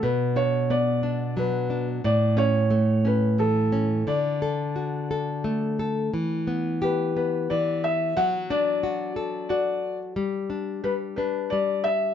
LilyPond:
<<
  \new Staff \with { instrumentName = "Felt piano" } { \time 3/4 \key d \major \tempo 4 = 89 b'8 cis''8 d''4 b'8. r16 | d''8 cis''4 b'8 a'4 | d''2~ d''8 r8 | r4 b'8 b'8 d''8 e''8 |
fis''8 d''4. d''8. r16 | r4 b'8 b'8 d''8 e''8 | }
  \new Staff \with { instrumentName = "Nylon-string guitar" } { \time 3/4 \key d \major b,8 d'8 b8 d'8 fis8 d'8 | a,8 cis'8 a8 cis'8 e8 cis'8 | d8 a'8 fis'8 a'8 a8 a'8 | e8 b8 g'8 b8 e4 |
fis8 d'8 fis'8 a'8 fis'4 | g8 d'8 g8 d'8 g4 | }
>>